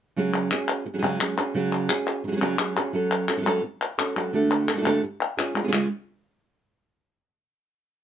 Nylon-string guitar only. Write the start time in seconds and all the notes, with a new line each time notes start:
0.16 C#3 F#3 C#4 F#4 G#4
0.51 C#4 F#4 G#4
0.85 muted nylon-string guitar stroke
0.94 F#3 C#4 F#4 G#4
0.98 C#3 F#3 C#4 F#4 G#4
1.03 F#3 C#4 F#4 G#4
1.20 F#3 C#4 F#4 G#4
1.38 C#4 F#4 G#4
1.54 C#3 F#3 C#4 F#4 G#4
1.90 C#4 F#4 G#4
2.24 F#3, muted nylon-string guitar stroke
2.28 F#3 C#4 F#4 G#4
2.33 F#3 C#4 F#4 G#4
2.37 C#4 F#4 G#4
2.41 C#3 F#3 C#4 F#4 G#4
2.59 F#3 C#4 F#4 G#4
2.76 C#4 F#4 G#4
2.93 F#3 C#4 F#4 A4
3.28 C#4 F#4 A4
3.37 F#3 C#4 F#4 A4
3.42 F#3 C#4 F#4 A4
3.46 F#3 C#4 F#4 A4
3.63 muted nylon-string guitar stroke
3.98 C#4 F#4 A4
4.16 F#3 C#4 F#4 A4
4.33 D3 A3 D4 F#4 A4
4.68 D4 F#4 A4
4.73 A3 D4 F#4 A4
4.77 A3 D4 F#4 A4
4.82 A3 D4 F#4 A4
4.86 D3 A3 D4 F#4 A4
5.03 muted nylon-string guitar stroke
5.37 C#4 F4 G#4
5.55 G#3 C#4 F4 G#4
5.63 G#3 C#4 F4 G#4
5.68 G#3 C#4 F4 G#4
5.72 C#3 G#3 C#4 F4 G#4